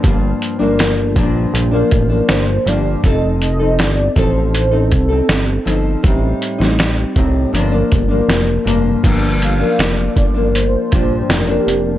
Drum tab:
CC |----------------|----------------|----------------|x---------------|
HH |x-x-x-x-x-x-x-x-|x-x-x-x-x-x-x-x-|x-x-x-x-x-x-x-x-|x-x-x-x-x-x-x-x-|
SD |----o-------o---|----o-------o---|---oo-------o---|----o-------o---|
BD |o-----o---o-----|o-----o---o-----|o-----o---o-----|o-----o---o-----|